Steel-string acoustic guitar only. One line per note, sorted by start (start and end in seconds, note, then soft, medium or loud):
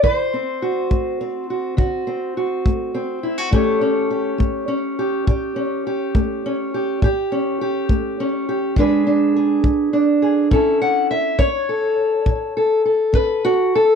0.03 0.56 D3 medium
0.03 2.36 C5 medium
0.33 1.19 C4 soft
0.62 1.49 F#4 soft
0.91 1.43 A3 medium
1.21 2.06 C4 soft
1.50 1.76 F#4 soft
1.77 2.30 D3 medium
1.77 2.36 F#4 medium
2.07 2.93 C4 soft
2.37 3.23 F#4 soft
2.66 3.18 A3 medium
2.95 3.53 C4 soft
3.23 3.38 E4 soft
3.38 3.52 F#4 soft
3.51 4.04 A2 medium
3.51 4.37 A3 medium
3.51 3.80 C#4 medium
3.51 4.09 G4 medium
3.51 6.99 C#5 medium
3.81 4.67 C#4 medium
4.11 4.98 G4 medium
4.38 4.91 A3 medium
4.68 5.55 C#4 medium
4.99 5.26 G4 medium
5.27 5.79 A2 medium
5.27 5.85 G4 medium
5.56 6.43 C#4 medium
5.87 6.73 G4 medium
6.15 6.67 A3 medium
6.46 6.99 C#4 medium
6.74 6.99 G4 medium
7.03 7.54 A2 medium
7.03 7.60 G4 medium
7.32 8.18 C#4 medium
7.61 8.47 G4 medium
7.90 8.42 A3 medium
8.20 8.74 C#4 medium
8.49 8.73 G4 medium
8.77 9.29 E3 medium
8.77 9.63 G#3 medium
8.77 9.05 D4 medium
8.77 9.35 G#4 medium
8.77 10.49 B4 medium
9.07 9.92 D4 medium
9.36 10.21 G#4 medium
9.64 10.16 G#3 medium
9.93 10.48 D4 medium
10.22 10.48 G#4 medium
10.51 11.03 A2 medium
10.51 11.37 C#4 soft
10.51 11.38 E4 soft
10.51 10.81 A4 soft
10.82 11.10 F#5 medium
11.11 11.39 E5 medium
11.38 11.91 C#4 medium
11.38 13.14 C#5 loud
11.69 12.56 A4 soft
12.26 12.79 A2 medium
12.57 12.85 A4 soft
12.85 13.75 A4 soft
13.13 13.66 C#4 medium
13.13 13.43 B4 medium
13.45 13.73 F#4 medium
13.75 13.95 A4 medium